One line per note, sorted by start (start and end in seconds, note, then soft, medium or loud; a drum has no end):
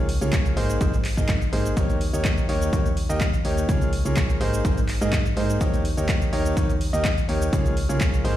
0.00 0.19 C#2 loud
0.09 open hi-hat loud
0.21 0.55 C#2 loud
0.21 0.54 A#3 medium
0.21 0.54 F4 medium
0.21 0.54 G#4 medium
0.21 0.54 C#5 medium
0.21 shaker medium
0.33 kick loud
0.33 clap loud
0.33 closed hi-hat medium
0.33 shaker medium
0.45 closed hi-hat soft
0.45 shaker soft
0.57 0.79 G#1 loud
0.57 0.78 A#3 loud
0.57 0.78 D#4 medium
0.57 0.78 G#4 medium
0.57 0.78 C5 loud
0.57 open hi-hat loud
0.70 closed hi-hat soft
0.70 shaker medium
0.81 1.15 G#1 medium
0.81 0.94 A#3 medium
0.81 0.94 D#4 medium
0.81 0.94 G#4 medium
0.81 0.94 C5 loud
0.81 kick loud
0.81 closed hi-hat medium
0.81 shaker medium
0.94 closed hi-hat soft
0.94 shaker soft
1.05 clap medium
1.05 open hi-hat loud
1.17 1.51 G#1 loud
1.17 1.29 A#3 medium
1.17 1.29 D#4 medium
1.17 1.29 G#4 medium
1.17 1.29 D#5 loud
1.17 kick medium
1.17 shaker medium
1.29 kick loud
1.29 clap loud
1.29 closed hi-hat medium
1.29 shaker medium
1.42 closed hi-hat soft
1.42 shaker soft
1.53 1.75 G#1 medium
1.53 1.74 A#3 medium
1.53 1.74 D#4 medium
1.53 1.74 G#4 medium
1.53 1.74 C5 medium
1.53 open hi-hat loud
1.65 closed hi-hat soft
1.65 shaker medium
1.77 2.11 D#2 medium
1.77 1.97 A#3 loud
1.77 1.97 D#4 medium
1.77 1.97 G4 medium
1.77 1.97 C#5 loud
1.77 kick loud
1.77 closed hi-hat medium
1.77 shaker medium
1.89 closed hi-hat soft
1.89 shaker soft
2.01 open hi-hat loud
2.13 2.47 D#2 loud
2.13 2.46 A#3 medium
2.13 2.46 D#4 medium
2.13 2.46 G4 medium
2.13 2.46 C#5 medium
2.13 closed hi-hat soft
2.13 shaker medium
2.25 kick loud
2.25 clap loud
2.25 closed hi-hat medium
2.25 shaker medium
2.38 closed hi-hat soft
2.38 shaker soft
2.49 2.71 D#2 loud
2.49 2.70 A#3 loud
2.49 2.70 D#4 medium
2.49 2.70 G4 medium
2.49 2.70 C#5 loud
2.49 open hi-hat loud
2.62 closed hi-hat soft
2.62 shaker medium
2.73 3.07 D#2 medium
2.73 2.86 A#3 medium
2.73 2.86 D#4 medium
2.73 2.86 G4 medium
2.73 2.86 C#5 loud
2.73 kick loud
2.73 closed hi-hat medium
2.73 shaker medium
2.86 closed hi-hat soft
2.86 shaker soft
2.97 open hi-hat loud
3.09 3.43 D#2 loud
3.09 3.21 A#3 medium
3.09 3.21 D#4 medium
3.09 3.21 G4 medium
3.09 3.21 D#5 loud
3.09 closed hi-hat soft
3.09 shaker medium
3.21 kick loud
3.21 clap loud
3.21 closed hi-hat medium
3.21 shaker medium
3.33 closed hi-hat soft
3.33 shaker soft
3.45 3.67 D#2 medium
3.45 3.66 A#3 medium
3.45 3.66 D#4 medium
3.45 3.66 G4 medium
3.45 3.66 C#5 medium
3.45 open hi-hat loud
3.57 closed hi-hat soft
3.57 shaker medium
3.69 4.03 C#2 loud
3.69 3.89 A#3 loud
3.69 3.89 F4 medium
3.69 3.89 G#4 medium
3.69 3.89 C#5 loud
3.69 kick loud
3.69 closed hi-hat medium
3.69 shaker medium
3.81 closed hi-hat soft
3.81 shaker soft
3.93 open hi-hat loud
4.05 4.38 C#2 loud
4.05 4.38 A#3 medium
4.05 4.38 F4 medium
4.05 4.38 G#4 medium
4.05 4.38 C#5 medium
4.05 closed hi-hat soft
4.05 shaker medium
4.16 kick loud
4.16 clap loud
4.16 closed hi-hat medium
4.16 shaker medium
4.29 closed hi-hat soft
4.29 shaker soft
4.41 4.63 G#1 loud
4.41 4.62 A#3 loud
4.41 4.62 D#4 medium
4.41 4.62 G#4 medium
4.41 4.62 C5 loud
4.41 open hi-hat loud
4.53 closed hi-hat soft
4.53 shaker medium
4.65 4.99 G#1 medium
4.65 4.78 A#3 medium
4.65 4.78 D#4 medium
4.65 4.78 G#4 medium
4.65 4.78 C5 loud
4.65 kick loud
4.65 closed hi-hat medium
4.65 shaker medium
4.77 closed hi-hat soft
4.77 shaker soft
4.88 clap medium
4.88 open hi-hat loud
5.01 5.34 G#2 loud
5.01 5.13 A#3 loud
5.01 5.13 D#4 medium
5.01 5.13 G#4 medium
5.01 5.13 D#5 loud
5.01 closed hi-hat soft
5.01 shaker medium
5.13 kick loud
5.13 clap loud
5.13 closed hi-hat medium
5.13 shaker medium
5.26 closed hi-hat soft
5.26 shaker soft
5.37 5.58 G#2 medium
5.37 5.58 A#3 medium
5.37 5.58 D#4 medium
5.37 5.58 G#4 medium
5.37 5.58 C5 medium
5.37 open hi-hat loud
5.50 closed hi-hat soft
5.50 shaker medium
5.61 5.95 D#2 loud
5.61 5.81 A#3 medium
5.61 5.81 D#4 medium
5.61 5.81 G4 medium
5.61 5.81 C#5 loud
5.61 kick loud
5.61 closed hi-hat loud
5.61 shaker medium
5.74 closed hi-hat soft
5.74 shaker soft
5.85 open hi-hat loud
5.97 6.31 D#2 loud
5.97 6.30 A#3 medium
5.97 6.30 D#4 medium
5.97 6.30 G4 medium
5.97 6.30 C#5 medium
5.97 closed hi-hat soft
5.97 shaker medium
6.09 kick loud
6.09 clap loud
6.09 closed hi-hat loud
6.09 shaker medium
6.22 closed hi-hat soft
6.22 shaker soft
6.33 6.55 D#2 loud
6.33 6.54 A#3 loud
6.33 6.54 D#4 medium
6.33 6.54 G4 medium
6.33 6.54 C#5 loud
6.33 open hi-hat loud
6.46 closed hi-hat soft
6.46 shaker medium
6.57 6.91 D#2 loud
6.57 6.70 D#4 medium
6.57 6.70 G4 medium
6.57 6.70 C#5 loud
6.57 kick loud
6.57 closed hi-hat loud
6.57 shaker medium
6.70 closed hi-hat soft
6.70 shaker soft
6.81 open hi-hat loud
6.93 7.27 D#2 loud
6.93 7.05 A#3 loud
6.93 7.05 D#4 medium
6.93 7.05 G4 medium
6.93 7.05 D#5 loud
6.93 closed hi-hat soft
6.93 shaker medium
7.05 kick loud
7.05 clap loud
7.05 closed hi-hat medium
7.05 shaker medium
7.18 closed hi-hat soft
7.18 shaker soft
7.29 7.51 D#2 medium
7.29 7.50 A#3 medium
7.29 7.50 D#4 medium
7.29 7.50 G4 medium
7.29 7.50 C#5 medium
7.29 open hi-hat loud
7.42 closed hi-hat soft
7.42 shaker medium
7.53 7.87 C#2 loud
7.53 7.73 A#3 loud
7.53 7.73 F4 medium
7.53 7.73 G#4 medium
7.53 7.73 C#5 loud
7.53 kick loud
7.53 closed hi-hat loud
7.53 shaker medium
7.66 closed hi-hat soft
7.66 shaker soft
7.77 open hi-hat loud
7.89 8.23 C#2 loud
7.89 8.22 A#3 medium
7.89 8.22 F4 medium
7.89 8.22 G#4 medium
7.89 8.22 C#5 medium
7.89 closed hi-hat soft
7.89 shaker medium
8.01 kick loud
8.01 clap loud
8.01 closed hi-hat loud
8.01 shaker medium
8.14 closed hi-hat soft
8.14 shaker soft
8.24 8.37 G#1 loud
8.24 8.37 A#3 loud
8.24 8.37 D#4 medium
8.24 8.37 G#4 medium
8.24 8.37 C5 loud
8.24 open hi-hat loud